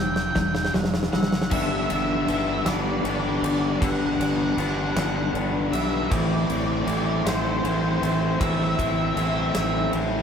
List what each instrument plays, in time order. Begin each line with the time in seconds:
Already playing: fingered electric bass E1, overdriven electric guitar C3 E3 G3, glockenspiel E6
0.08 lead electric guitar G5
0.15 lead electric guitar G5, snare
0.22 lead electric guitar G5
0.31 lead electric guitar G5
0.35 fingered electric bass E1, overdriven electric guitar C3 E3 G3, kick, snare
0.39 lead electric guitar G5
0.47 lead electric guitar G5
0.55 lead electric guitar G5, snare
0.63 lead electric guitar G5, snare
0.73 fingered electric bass E1, overdriven electric guitar C3 E3 G3, glockenspiel F#6, snare
0.84 snare
0.94 snare
1.03 snare
1.13 fingered electric bass F#1, overdriven electric guitar C3 E3 G3, lead electric guitar F#5, glockenspiel E6, snare
1.20 lead electric guitar F#5, snare
1.28 lead electric guitar F#5
1.32 lead electric guitar F#5, snare
1.42 lead electric guitar F#5, snare
1.50 fingered electric bass G1, overdriven electric guitar G2 D3 G3 B3 D4 G4, lead electric guitar E5, kick, crash
1.58 lead electric guitar E5
1.66 lead electric guitar E5
1.74 lead electric guitar E5
1.82 lead electric guitar E5
1.90 fingered electric bass G1, overdriven electric guitar G3 B3 D4 G4, lead electric guitar E5, ride
1.98 lead electric guitar E5
2.06 lead electric guitar E5
2.13 lead electric guitar E5
2.22 lead electric guitar E5
2.27 fingered electric bass G1, overdriven electric guitar D3 G3 B3 D4 G4, lead electric guitar E5, ride
2.37 lead electric guitar E5
2.45 lead electric guitar E5
2.53 lead electric guitar E5
2.61 lead electric guitar E5
2.66 fingered electric bass G1, overdriven electric guitar G2 D3 G3 B3 D4 G4, lead electric guitar D5, snare, ride
2.73 lead electric guitar D5
2.82 lead electric guitar D5
2.90 lead electric guitar D5
2.97 lead electric guitar D5
3.04 fingered electric bass G1, overdriven electric guitar D3 G3 B3 D4 G4, lead electric guitar D5, ride
3.15 lead electric guitar D5
3.21 lead electric guitar D5
3.29 lead electric guitar D5
3.38 lead electric guitar D5
3.42 fingered electric bass G1, overdriven electric guitar G3 B3 D4 G4, lead electric guitar D5, ride
3.54 lead electric guitar D5
3.61 lead electric guitar D5
3.69 lead electric guitar D5
3.77 overdriven electric guitar G2 D3, lead electric guitar D5
3.81 fingered electric bass G1, overdriven electric guitar G3 B3 D4 G4, lead electric guitar F#5, kick, ride
3.91 lead electric guitar F#5
3.99 lead electric guitar F#5
4.06 lead electric guitar F#5
4.13 lead electric guitar F#5
4.18 fingered electric bass G1, overdriven electric guitar G3 B3 D4 G4, lead electric guitar F#5, ride
4.30 lead electric guitar F#5
4.37 lead electric guitar F#5
4.45 lead electric guitar F#5
4.52 lead electric guitar F#5
4.56 fingered electric bass G1, overdriven electric guitar D3 G3 B3 D4, lead electric guitar F#5, ride
4.60 overdriven electric guitar G4
4.67 lead electric guitar F#5
4.76 lead electric guitar F#5
4.84 lead electric guitar F#5
4.92 overdriven electric guitar D4 G4, lead electric guitar F#5
4.96 fingered electric bass G1, overdriven electric guitar G2 D3 G3 B3, lead electric guitar F#5, snare, ride
5.07 lead electric guitar F#5
5.16 lead electric guitar F#5
5.23 lead electric guitar F#5
5.33 fingered electric bass G1, overdriven electric guitar D3 G3 B3 D4 G4, ride
5.71 fingered electric bass B1, overdriven electric guitar G3 B3 D4 G4, lead electric guitar E5, ride
5.80 lead electric guitar E5
5.88 lead electric guitar E5
5.95 lead electric guitar E5
6.04 lead electric guitar E5
6.09 fingered electric bass A1, overdriven electric guitar A2 E3 A3 C4 E4, lead electric guitar D5, kick, ride
6.18 lead electric guitar D5
6.26 lead electric guitar D5
6.34 lead electric guitar D5
6.43 lead electric guitar D5
6.48 fingered electric bass A1, overdriven electric guitar A3 C4 E4, lead electric guitar D5, ride
6.58 lead electric guitar D5
6.67 lead electric guitar D5
6.73 lead electric guitar D5
6.81 lead electric guitar D5
6.86 fingered electric bass A1, overdriven electric guitar E3 A3 C4 E4, lead electric guitar D5, ride
6.97 lead electric guitar D5
7.05 lead electric guitar D5
7.13 lead electric guitar D5
7.25 fingered electric bass A1, overdriven electric guitar A2 E3 A3 C4 E4, lead electric guitar C5, snare, ride
7.33 lead electric guitar C5
7.41 lead electric guitar C5
7.49 lead electric guitar C5
7.57 lead electric guitar C5
7.62 fingered electric bass A1, overdriven electric guitar E3 A3 C4 E4, lead electric guitar C5, ride
7.72 lead electric guitar C5
7.80 lead electric guitar C5
7.89 lead electric guitar C5
7.96 lead electric guitar C5
8.02 fingered electric bass A1, overdriven electric guitar A3 C4 E4, lead electric guitar C5, ride
8.12 lead electric guitar C5
8.20 lead electric guitar C5
8.28 lead electric guitar C5
8.39 fingered electric bass A1, overdriven electric guitar A2 E3 A3 C4 E4, lead electric guitar E5, kick, ride
8.47 lead electric guitar E5
8.55 lead electric guitar E5
8.64 lead electric guitar E5
8.71 lead electric guitar E5
8.78 fingered electric bass A1, overdriven electric guitar A3 C4 E4, lead electric guitar E5, kick, ride
8.87 lead electric guitar E5
8.95 lead electric guitar E5
9.03 lead electric guitar E5
9.10 lead electric guitar E5
9.16 fingered electric bass A1, overdriven electric guitar E3 A3 C4 E4, lead electric guitar E5, ride
9.26 lead electric guitar E5
9.35 lead electric guitar E5
9.41 lead electric guitar E5
9.49 lead electric guitar E5
9.55 fingered electric bass A1, overdriven electric guitar A2 E3 A3 C4 E4, lead electric guitar E5, snare, ride
9.65 lead electric guitar E5
9.74 lead electric guitar E5
9.81 lead electric guitar E5
9.93 fingered electric bass A1, overdriven electric guitar E3 A3 C4 E4, ride